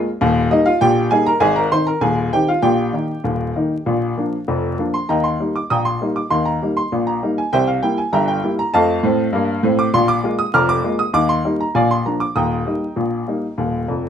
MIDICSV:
0, 0, Header, 1, 2, 480
1, 0, Start_track
1, 0, Key_signature, -3, "major"
1, 0, Tempo, 607287
1, 169, Time_signature, 2, 2, 24, 8
1, 11137, End_track
2, 0, Start_track
2, 0, Title_t, "Upright piano"
2, 0, Program_c, 0, 0
2, 166, Note_on_c, 0, 39, 100
2, 170, Note_on_c, 0, 27, 88
2, 370, Note_off_c, 0, 39, 0
2, 372, Note_off_c, 0, 27, 0
2, 398, Note_on_c, 0, 55, 52
2, 404, Note_on_c, 0, 75, 95
2, 406, Note_on_c, 0, 58, 58
2, 410, Note_on_c, 0, 63, 74
2, 519, Note_off_c, 0, 63, 0
2, 519, Note_on_c, 0, 77, 90
2, 525, Note_off_c, 0, 75, 0
2, 528, Note_on_c, 0, 65, 73
2, 531, Note_off_c, 0, 55, 0
2, 537, Note_off_c, 0, 58, 0
2, 638, Note_off_c, 0, 65, 0
2, 640, Note_on_c, 0, 79, 105
2, 641, Note_on_c, 0, 46, 85
2, 642, Note_off_c, 0, 77, 0
2, 643, Note_on_c, 0, 34, 79
2, 649, Note_on_c, 0, 67, 84
2, 846, Note_off_c, 0, 46, 0
2, 847, Note_off_c, 0, 34, 0
2, 869, Note_off_c, 0, 67, 0
2, 869, Note_off_c, 0, 79, 0
2, 875, Note_on_c, 0, 55, 52
2, 875, Note_on_c, 0, 80, 100
2, 881, Note_on_c, 0, 58, 56
2, 885, Note_on_c, 0, 63, 59
2, 886, Note_on_c, 0, 68, 75
2, 996, Note_off_c, 0, 68, 0
2, 999, Note_off_c, 0, 80, 0
2, 1000, Note_on_c, 0, 82, 99
2, 1009, Note_off_c, 0, 55, 0
2, 1010, Note_on_c, 0, 70, 70
2, 1013, Note_off_c, 0, 58, 0
2, 1016, Note_off_c, 0, 63, 0
2, 1108, Note_on_c, 0, 32, 82
2, 1110, Note_on_c, 0, 44, 95
2, 1110, Note_on_c, 0, 80, 108
2, 1118, Note_off_c, 0, 70, 0
2, 1118, Note_on_c, 0, 68, 89
2, 1121, Note_off_c, 0, 82, 0
2, 1232, Note_off_c, 0, 68, 0
2, 1232, Note_on_c, 0, 82, 88
2, 1237, Note_off_c, 0, 80, 0
2, 1245, Note_on_c, 0, 70, 64
2, 1319, Note_off_c, 0, 32, 0
2, 1320, Note_off_c, 0, 44, 0
2, 1356, Note_on_c, 0, 51, 47
2, 1357, Note_off_c, 0, 70, 0
2, 1358, Note_off_c, 0, 82, 0
2, 1358, Note_on_c, 0, 60, 47
2, 1358, Note_on_c, 0, 84, 100
2, 1361, Note_on_c, 0, 72, 74
2, 1362, Note_on_c, 0, 63, 51
2, 1475, Note_off_c, 0, 72, 0
2, 1476, Note_on_c, 0, 82, 83
2, 1482, Note_off_c, 0, 84, 0
2, 1485, Note_on_c, 0, 70, 64
2, 1491, Note_off_c, 0, 51, 0
2, 1492, Note_off_c, 0, 60, 0
2, 1496, Note_off_c, 0, 63, 0
2, 1590, Note_on_c, 0, 39, 75
2, 1591, Note_on_c, 0, 27, 71
2, 1591, Note_on_c, 0, 80, 93
2, 1597, Note_off_c, 0, 70, 0
2, 1598, Note_on_c, 0, 68, 69
2, 1601, Note_off_c, 0, 82, 0
2, 1802, Note_off_c, 0, 39, 0
2, 1803, Note_off_c, 0, 27, 0
2, 1826, Note_off_c, 0, 68, 0
2, 1827, Note_off_c, 0, 80, 0
2, 1841, Note_on_c, 0, 79, 86
2, 1845, Note_on_c, 0, 51, 45
2, 1846, Note_on_c, 0, 60, 46
2, 1846, Note_on_c, 0, 63, 47
2, 1853, Note_on_c, 0, 67, 64
2, 1963, Note_off_c, 0, 67, 0
2, 1964, Note_on_c, 0, 77, 76
2, 1965, Note_off_c, 0, 79, 0
2, 1975, Note_on_c, 0, 65, 54
2, 1978, Note_off_c, 0, 51, 0
2, 1979, Note_off_c, 0, 60, 0
2, 1979, Note_off_c, 0, 63, 0
2, 2074, Note_on_c, 0, 46, 77
2, 2074, Note_on_c, 0, 79, 84
2, 2075, Note_on_c, 0, 34, 65
2, 2081, Note_on_c, 0, 67, 63
2, 2084, Note_off_c, 0, 65, 0
2, 2087, Note_off_c, 0, 77, 0
2, 2286, Note_off_c, 0, 46, 0
2, 2287, Note_off_c, 0, 34, 0
2, 2315, Note_on_c, 0, 51, 44
2, 2320, Note_on_c, 0, 58, 36
2, 2325, Note_on_c, 0, 63, 44
2, 2453, Note_off_c, 0, 51, 0
2, 2456, Note_off_c, 0, 58, 0
2, 2460, Note_off_c, 0, 63, 0
2, 2561, Note_on_c, 0, 39, 62
2, 2564, Note_on_c, 0, 27, 66
2, 2772, Note_off_c, 0, 39, 0
2, 2774, Note_off_c, 0, 27, 0
2, 2812, Note_on_c, 0, 51, 40
2, 2814, Note_on_c, 0, 58, 40
2, 2816, Note_on_c, 0, 63, 48
2, 2947, Note_off_c, 0, 51, 0
2, 2948, Note_off_c, 0, 58, 0
2, 2950, Note_off_c, 0, 63, 0
2, 3052, Note_on_c, 0, 46, 72
2, 3054, Note_on_c, 0, 34, 68
2, 3244, Note_off_c, 0, 79, 0
2, 3261, Note_off_c, 0, 46, 0
2, 3262, Note_off_c, 0, 34, 0
2, 3300, Note_on_c, 0, 53, 37
2, 3301, Note_on_c, 0, 58, 42
2, 3309, Note_on_c, 0, 62, 40
2, 3434, Note_off_c, 0, 53, 0
2, 3435, Note_off_c, 0, 58, 0
2, 3440, Note_off_c, 0, 62, 0
2, 3508, Note_off_c, 0, 67, 0
2, 3540, Note_on_c, 0, 41, 62
2, 3543, Note_on_c, 0, 29, 64
2, 3747, Note_off_c, 0, 41, 0
2, 3749, Note_off_c, 0, 29, 0
2, 3782, Note_on_c, 0, 53, 39
2, 3784, Note_on_c, 0, 58, 41
2, 3789, Note_on_c, 0, 62, 43
2, 3903, Note_on_c, 0, 84, 74
2, 3916, Note_off_c, 0, 53, 0
2, 3917, Note_off_c, 0, 58, 0
2, 3921, Note_off_c, 0, 62, 0
2, 4023, Note_on_c, 0, 82, 75
2, 4024, Note_on_c, 0, 39, 63
2, 4024, Note_on_c, 0, 51, 69
2, 4026, Note_off_c, 0, 84, 0
2, 4031, Note_on_c, 0, 79, 53
2, 4033, Note_on_c, 0, 75, 56
2, 4139, Note_on_c, 0, 84, 72
2, 4141, Note_off_c, 0, 79, 0
2, 4142, Note_off_c, 0, 75, 0
2, 4145, Note_off_c, 0, 82, 0
2, 4230, Note_off_c, 0, 39, 0
2, 4230, Note_off_c, 0, 51, 0
2, 4266, Note_on_c, 0, 55, 36
2, 4267, Note_on_c, 0, 58, 40
2, 4271, Note_on_c, 0, 63, 42
2, 4371, Note_off_c, 0, 84, 0
2, 4391, Note_on_c, 0, 86, 68
2, 4399, Note_off_c, 0, 55, 0
2, 4399, Note_off_c, 0, 58, 0
2, 4402, Note_off_c, 0, 63, 0
2, 4508, Note_on_c, 0, 46, 58
2, 4508, Note_on_c, 0, 87, 83
2, 4509, Note_off_c, 0, 86, 0
2, 4511, Note_on_c, 0, 34, 61
2, 4515, Note_on_c, 0, 82, 61
2, 4519, Note_on_c, 0, 79, 62
2, 4623, Note_off_c, 0, 82, 0
2, 4625, Note_off_c, 0, 79, 0
2, 4625, Note_on_c, 0, 84, 78
2, 4627, Note_off_c, 0, 87, 0
2, 4712, Note_off_c, 0, 46, 0
2, 4713, Note_off_c, 0, 34, 0
2, 4751, Note_on_c, 0, 55, 37
2, 4754, Note_on_c, 0, 58, 42
2, 4758, Note_on_c, 0, 63, 41
2, 4817, Note_off_c, 0, 84, 0
2, 4868, Note_on_c, 0, 86, 64
2, 4882, Note_off_c, 0, 55, 0
2, 4884, Note_off_c, 0, 58, 0
2, 4886, Note_off_c, 0, 63, 0
2, 4983, Note_on_c, 0, 84, 84
2, 4985, Note_on_c, 0, 39, 64
2, 4985, Note_on_c, 0, 51, 69
2, 4987, Note_off_c, 0, 86, 0
2, 5102, Note_on_c, 0, 82, 72
2, 5105, Note_off_c, 0, 84, 0
2, 5189, Note_off_c, 0, 39, 0
2, 5189, Note_off_c, 0, 51, 0
2, 5233, Note_on_c, 0, 55, 42
2, 5234, Note_on_c, 0, 58, 42
2, 5241, Note_on_c, 0, 63, 42
2, 5295, Note_off_c, 0, 82, 0
2, 5348, Note_on_c, 0, 84, 78
2, 5363, Note_off_c, 0, 55, 0
2, 5364, Note_off_c, 0, 58, 0
2, 5368, Note_off_c, 0, 63, 0
2, 5472, Note_on_c, 0, 34, 61
2, 5472, Note_on_c, 0, 46, 63
2, 5539, Note_off_c, 0, 84, 0
2, 5587, Note_on_c, 0, 82, 72
2, 5672, Note_off_c, 0, 34, 0
2, 5672, Note_off_c, 0, 46, 0
2, 5712, Note_on_c, 0, 55, 41
2, 5713, Note_on_c, 0, 58, 45
2, 5716, Note_on_c, 0, 63, 49
2, 5778, Note_off_c, 0, 82, 0
2, 5834, Note_on_c, 0, 80, 71
2, 5841, Note_off_c, 0, 55, 0
2, 5842, Note_off_c, 0, 58, 0
2, 5845, Note_off_c, 0, 63, 0
2, 5948, Note_off_c, 0, 80, 0
2, 5949, Note_on_c, 0, 36, 64
2, 5949, Note_on_c, 0, 79, 92
2, 5950, Note_on_c, 0, 48, 74
2, 5958, Note_on_c, 0, 76, 72
2, 5960, Note_on_c, 0, 72, 69
2, 6062, Note_off_c, 0, 76, 0
2, 6063, Note_off_c, 0, 72, 0
2, 6066, Note_off_c, 0, 79, 0
2, 6067, Note_on_c, 0, 77, 69
2, 6149, Note_off_c, 0, 36, 0
2, 6150, Note_off_c, 0, 48, 0
2, 6183, Note_on_c, 0, 55, 46
2, 6184, Note_off_c, 0, 77, 0
2, 6185, Note_on_c, 0, 79, 78
2, 6186, Note_on_c, 0, 58, 48
2, 6192, Note_on_c, 0, 64, 50
2, 6302, Note_off_c, 0, 79, 0
2, 6307, Note_on_c, 0, 80, 69
2, 6314, Note_off_c, 0, 55, 0
2, 6316, Note_off_c, 0, 58, 0
2, 6320, Note_off_c, 0, 64, 0
2, 6423, Note_off_c, 0, 80, 0
2, 6423, Note_on_c, 0, 31, 71
2, 6423, Note_on_c, 0, 43, 69
2, 6425, Note_on_c, 0, 82, 91
2, 6434, Note_on_c, 0, 79, 66
2, 6435, Note_on_c, 0, 76, 70
2, 6531, Note_off_c, 0, 79, 0
2, 6539, Note_off_c, 0, 76, 0
2, 6542, Note_off_c, 0, 82, 0
2, 6542, Note_on_c, 0, 79, 77
2, 6624, Note_off_c, 0, 31, 0
2, 6624, Note_off_c, 0, 43, 0
2, 6667, Note_on_c, 0, 55, 49
2, 6667, Note_on_c, 0, 58, 43
2, 6667, Note_on_c, 0, 64, 51
2, 6732, Note_off_c, 0, 79, 0
2, 6790, Note_on_c, 0, 82, 86
2, 6796, Note_off_c, 0, 55, 0
2, 6796, Note_off_c, 0, 58, 0
2, 6796, Note_off_c, 0, 64, 0
2, 6903, Note_off_c, 0, 82, 0
2, 6905, Note_on_c, 0, 81, 104
2, 6908, Note_on_c, 0, 41, 78
2, 6913, Note_on_c, 0, 75, 79
2, 6913, Note_on_c, 0, 77, 79
2, 6920, Note_on_c, 0, 57, 77
2, 7094, Note_off_c, 0, 41, 0
2, 7101, Note_off_c, 0, 57, 0
2, 7139, Note_on_c, 0, 45, 80
2, 7155, Note_on_c, 0, 60, 81
2, 7327, Note_off_c, 0, 45, 0
2, 7337, Note_off_c, 0, 60, 0
2, 7371, Note_on_c, 0, 43, 78
2, 7387, Note_on_c, 0, 58, 77
2, 7562, Note_off_c, 0, 43, 0
2, 7572, Note_off_c, 0, 58, 0
2, 7613, Note_on_c, 0, 45, 84
2, 7627, Note_on_c, 0, 60, 80
2, 7703, Note_off_c, 0, 81, 0
2, 7706, Note_off_c, 0, 77, 0
2, 7707, Note_off_c, 0, 75, 0
2, 7735, Note_on_c, 0, 86, 91
2, 7803, Note_off_c, 0, 45, 0
2, 7811, Note_off_c, 0, 60, 0
2, 7852, Note_off_c, 0, 86, 0
2, 7855, Note_on_c, 0, 34, 84
2, 7855, Note_on_c, 0, 84, 104
2, 7856, Note_on_c, 0, 46, 89
2, 7969, Note_on_c, 0, 86, 98
2, 7972, Note_off_c, 0, 84, 0
2, 8055, Note_off_c, 0, 34, 0
2, 8056, Note_off_c, 0, 46, 0
2, 8091, Note_on_c, 0, 56, 55
2, 8091, Note_on_c, 0, 58, 50
2, 8095, Note_on_c, 0, 65, 56
2, 8159, Note_off_c, 0, 86, 0
2, 8209, Note_on_c, 0, 87, 93
2, 8221, Note_off_c, 0, 56, 0
2, 8221, Note_off_c, 0, 58, 0
2, 8224, Note_off_c, 0, 65, 0
2, 8327, Note_off_c, 0, 87, 0
2, 8330, Note_on_c, 0, 29, 77
2, 8330, Note_on_c, 0, 41, 77
2, 8330, Note_on_c, 0, 89, 109
2, 8337, Note_on_c, 0, 86, 86
2, 8339, Note_on_c, 0, 82, 88
2, 8437, Note_off_c, 0, 86, 0
2, 8444, Note_off_c, 0, 82, 0
2, 8447, Note_off_c, 0, 89, 0
2, 8448, Note_on_c, 0, 86, 101
2, 8531, Note_off_c, 0, 29, 0
2, 8531, Note_off_c, 0, 41, 0
2, 8570, Note_on_c, 0, 56, 51
2, 8576, Note_on_c, 0, 58, 48
2, 8577, Note_on_c, 0, 65, 54
2, 8637, Note_off_c, 0, 86, 0
2, 8686, Note_on_c, 0, 87, 93
2, 8699, Note_off_c, 0, 56, 0
2, 8703, Note_off_c, 0, 58, 0
2, 8705, Note_off_c, 0, 65, 0
2, 8801, Note_on_c, 0, 51, 83
2, 8802, Note_on_c, 0, 39, 77
2, 8803, Note_off_c, 0, 87, 0
2, 8804, Note_on_c, 0, 86, 110
2, 8922, Note_off_c, 0, 86, 0
2, 8923, Note_on_c, 0, 84, 89
2, 9004, Note_off_c, 0, 39, 0
2, 9004, Note_off_c, 0, 51, 0
2, 9046, Note_on_c, 0, 55, 44
2, 9048, Note_on_c, 0, 58, 48
2, 9051, Note_on_c, 0, 63, 55
2, 9113, Note_off_c, 0, 84, 0
2, 9173, Note_on_c, 0, 82, 71
2, 9176, Note_off_c, 0, 55, 0
2, 9177, Note_off_c, 0, 58, 0
2, 9180, Note_off_c, 0, 63, 0
2, 9284, Note_on_c, 0, 46, 76
2, 9286, Note_off_c, 0, 82, 0
2, 9287, Note_on_c, 0, 34, 66
2, 9287, Note_on_c, 0, 80, 81
2, 9294, Note_on_c, 0, 74, 69
2, 9295, Note_on_c, 0, 77, 65
2, 9399, Note_off_c, 0, 74, 0
2, 9400, Note_off_c, 0, 77, 0
2, 9404, Note_off_c, 0, 80, 0
2, 9413, Note_on_c, 0, 84, 79
2, 9487, Note_off_c, 0, 46, 0
2, 9489, Note_off_c, 0, 34, 0
2, 9527, Note_off_c, 0, 84, 0
2, 9531, Note_on_c, 0, 53, 40
2, 9531, Note_on_c, 0, 82, 61
2, 9534, Note_on_c, 0, 58, 39
2, 9537, Note_on_c, 0, 62, 41
2, 9645, Note_on_c, 0, 86, 76
2, 9646, Note_off_c, 0, 82, 0
2, 9661, Note_off_c, 0, 53, 0
2, 9663, Note_off_c, 0, 58, 0
2, 9665, Note_off_c, 0, 62, 0
2, 9764, Note_off_c, 0, 86, 0
2, 9766, Note_on_c, 0, 27, 60
2, 9766, Note_on_c, 0, 87, 75
2, 9770, Note_on_c, 0, 39, 66
2, 9775, Note_on_c, 0, 79, 59
2, 9775, Note_on_c, 0, 82, 58
2, 9970, Note_off_c, 0, 27, 0
2, 9972, Note_off_c, 0, 39, 0
2, 10004, Note_on_c, 0, 55, 34
2, 10006, Note_on_c, 0, 58, 34
2, 10012, Note_on_c, 0, 63, 41
2, 10137, Note_off_c, 0, 55, 0
2, 10138, Note_off_c, 0, 58, 0
2, 10143, Note_off_c, 0, 63, 0
2, 10245, Note_on_c, 0, 46, 53
2, 10246, Note_on_c, 0, 34, 56
2, 10450, Note_off_c, 0, 46, 0
2, 10451, Note_off_c, 0, 34, 0
2, 10491, Note_on_c, 0, 55, 31
2, 10494, Note_on_c, 0, 58, 36
2, 10497, Note_on_c, 0, 63, 39
2, 10623, Note_off_c, 0, 55, 0
2, 10625, Note_off_c, 0, 58, 0
2, 10627, Note_off_c, 0, 63, 0
2, 10732, Note_on_c, 0, 39, 60
2, 10734, Note_on_c, 0, 27, 54
2, 10936, Note_off_c, 0, 39, 0
2, 10937, Note_off_c, 0, 27, 0
2, 10973, Note_on_c, 0, 41, 52
2, 10974, Note_on_c, 0, 29, 52
2, 11137, Note_off_c, 0, 29, 0
2, 11137, Note_off_c, 0, 41, 0
2, 11137, Note_off_c, 0, 79, 0
2, 11137, Note_off_c, 0, 82, 0
2, 11137, Note_off_c, 0, 87, 0
2, 11137, End_track
0, 0, End_of_file